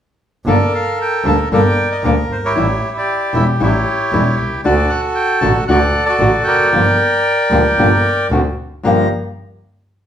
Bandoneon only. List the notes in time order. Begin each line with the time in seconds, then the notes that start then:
0.48 A4 A#4 D5
0.75 F5
1.02 G5
1.28 A5
1.53 A#4 D5 G5
1.92 D#5
2.04 D5
2.32 C5
2.45 E4 G4 C#5
2.98 G4 D5
3.36 E5
3.62 E4 G4 C#5
4.64 F#4 A4 D5
4.89 F#5
5.15 G5
5.41 A5
5.68 A4 D5 F#5
6.06 F#4 A4 D5
6.44 A#4 D5 G5
8.84 A#5